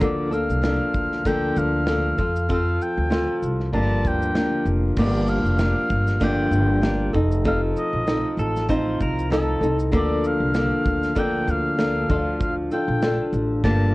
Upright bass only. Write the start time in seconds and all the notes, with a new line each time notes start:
0.01 D2
0.49 C2
0.95 D2
1.57 D2
2.19 F2
2.97 D2
3.42 C2
3.73 G1
4.05 D2
4.65 F1
4.97 G1
5.44 F1
5.90 G1
6.51 G1
7.14 F1
7.93 A#1
8.37 A1
9.00 C2
9.61 C2
9.93 D2
10.40 C2
10.86 D2
11.47 D2
12.10 D2
12.88 A#1
13.33 A1
13.64 G1